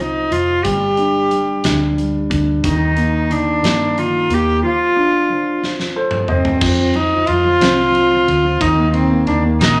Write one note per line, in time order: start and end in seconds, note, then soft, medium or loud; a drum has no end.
0.00 0.28 C2 medium
0.00 0.31 F3 medium
0.00 0.34 D#4 medium
0.31 0.65 F1 medium
0.31 0.64 F3 soft
0.31 0.66 F4 medium
0.31 closed hi-hat medium
0.64 1.66 G1 medium
0.64 1.30 G3 medium
0.64 1.64 G4 medium
0.64 kick medium
0.64 closed hi-hat medium
0.97 1.63 D4 soft
0.97 closed hi-hat soft
1.31 1.96 G3 soft
1.31 closed hi-hat medium
1.64 2.27 D2 medium
1.64 2.28 D4 medium
1.64 snare medium
1.64 closed hi-hat medium
1.97 2.62 G3 soft
1.97 closed hi-hat soft
2.30 2.62 D2 medium
2.30 2.63 D4 medium
2.30 kick medium
2.30 closed hi-hat medium
2.64 3.60 D#2 loud
2.64 3.28 D#3 medium
2.64 3.33 D#4 medium
2.64 kick loud
2.64 closed hi-hat medium
2.97 3.61 A#3 soft
2.97 closed hi-hat soft
3.30 3.95 D#3 soft
3.30 4.00 D4 medium
3.30 closed hi-hat medium
3.63 4.26 G2 medium
3.63 4.28 A#3 soft
3.63 snare loud
3.63 closed hi-hat medium
3.97 4.61 D#3 soft
3.97 4.35 F4 medium
3.97 closed hi-hat soft
4.29 4.61 D#2 medium
4.29 4.62 A#3 medium
4.29 closed hi-hat medium
4.33 4.65 G4 medium
4.63 5.28 F3 medium
4.63 5.60 F4 medium
4.96 5.60 D4 medium
5.29 5.61 F3 medium
5.63 6.59 F3 medium
5.63 snare soft
5.80 snare medium
5.96 6.60 A4 soft
5.96 6.27 C5 medium
6.11 mid tom medium
6.28 6.97 C4 medium
6.28 6.61 C5 medium
6.28 6.60 D#5 medium
6.28 mid tom medium
6.45 floor tom medium
6.61 7.24 F2 loud
6.61 6.78 F3 medium
6.61 kick loud
6.61 crash loud
6.79 6.94 F3 medium
6.94 7.11 F3 medium
6.94 7.29 D#4 medium
6.94 ride soft
7.12 7.27 F3 medium
7.27 7.59 F2 medium
7.27 7.43 F3 medium
7.27 8.62 F4 loud
7.27 ride medium
7.44 7.77 F3 medium
7.61 8.23 C2 medium
7.61 8.57 C4 medium
7.61 snare loud
7.61 ride medium
7.78 7.94 F3 medium
7.95 8.10 F3 soft
7.95 ride soft
8.11 8.26 F3 medium
8.27 8.59 D2 medium
8.27 8.43 F3 medium
8.27 ride medium
8.44 8.60 F3 medium
8.60 9.23 D#2 loud
8.60 8.92 D#3 medium
8.60 8.93 D#4 medium
8.60 kick loud
8.60 ride medium
8.76 9.10 A#3 medium
8.94 9.26 D#3 medium
8.94 9.25 C4 medium
8.94 ride soft
9.11 9.43 A#3 medium
9.27 9.58 D#2 medium
9.27 9.59 D#3 medium
9.27 9.42 D4 medium
9.27 ride soft
9.45 9.76 A#3 medium
9.60 9.80 A#1 medium
9.60 9.80 D#3 medium
9.60 9.80 D#4 loud
9.60 snare loud
9.60 ride medium